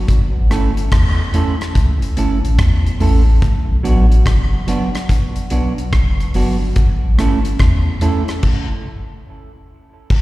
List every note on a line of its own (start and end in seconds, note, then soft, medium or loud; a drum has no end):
0.08 kick loud
0.08 closed hi-hat medium
0.36 0.50 A1 medium
0.50 0.90 G1 medium
0.50 0.71 A3 medium
0.50 0.71 C#4 medium
0.50 0.71 E4 medium
0.50 0.71 A4 medium
0.50 cross-stick medium
0.50 closed hi-hat medium
0.77 closed hi-hat soft
0.92 1.31 E2 medium
0.92 kick loud
0.92 cross-stick loud
0.92 closed hi-hat medium
1.34 1.54 A3 medium
1.34 1.54 C#4 medium
1.34 1.55 E4 medium
1.34 1.55 A4 medium
1.34 closed hi-hat medium
1.61 cross-stick medium
1.61 closed hi-hat soft
1.75 2.01 C#2 loud
1.75 kick loud
1.75 closed hi-hat medium
2.02 closed hi-hat medium
2.17 2.43 G1 medium
2.17 2.38 A3 medium
2.17 2.38 C#4 medium
2.17 2.38 E4 medium
2.17 2.38 A4 medium
2.17 closed hi-hat medium
2.44 2.58 A1 medium
2.44 closed hi-hat medium
2.59 2.98 E2 loud
2.59 kick loud
2.59 cross-stick loud
2.59 closed hi-hat medium
2.86 closed hi-hat medium
3.00 3.40 A1 medium
3.00 3.21 A3 medium
3.00 3.21 C#4 medium
3.00 3.21 E4 medium
3.00 3.22 A4 loud
3.00 open hi-hat medium
3.42 kick loud
3.42 closed hi-hat medium
3.70 3.83 B1 medium
3.83 4.23 A1 medium
3.83 4.04 F#3 medium
3.83 4.05 B3 medium
3.83 4.05 D4 medium
3.83 4.05 F#4 medium
3.83 closed hi-hat medium
4.12 closed hi-hat soft
4.26 4.65 F#1 medium
4.26 kick loud
4.26 cross-stick loud
4.26 closed hi-hat medium
4.67 4.88 F#3 medium
4.67 4.88 B3 medium
4.67 4.88 D4 medium
4.67 4.89 F#4 medium
4.67 closed hi-hat medium
4.95 cross-stick medium
4.95 closed hi-hat soft
5.09 kick medium
5.09 closed hi-hat medium
5.36 closed hi-hat medium
5.50 5.90 B1 medium
5.50 5.71 F#3 medium
5.50 5.72 B3 medium
5.50 5.72 D4 medium
5.50 5.72 F#4 medium
5.50 closed hi-hat medium
5.78 closed hi-hat medium
5.93 6.32 F#1 loud
5.93 kick loud
5.93 cross-stick loud
5.93 closed hi-hat medium
6.20 closed hi-hat soft
6.34 6.74 G1 medium
6.34 6.55 F#3 medium
6.34 6.55 B3 medium
6.34 6.56 D4 medium
6.34 6.56 F#4 medium
6.34 open hi-hat medium
6.76 kick loud
6.76 closed hi-hat medium
7.04 7.17 A1 loud
7.18 7.57 G1 medium
7.18 7.39 A3 medium
7.18 7.39 C#4 medium
7.18 7.39 E4 medium
7.18 7.39 A4 medium
7.18 cross-stick medium
7.18 closed hi-hat medium
7.45 closed hi-hat medium
7.59 7.99 E2 medium
7.59 kick loud
7.59 cross-stick loud
7.59 closed hi-hat medium
8.01 8.22 A3 medium
8.01 8.22 C#4 medium
8.01 8.22 E4 medium
8.01 8.22 A4 medium
8.01 closed hi-hat medium
8.28 cross-stick medium
8.28 closed hi-hat soft
8.43 kick loud
8.43 crash medium
10.10 kick loud
10.10 crash medium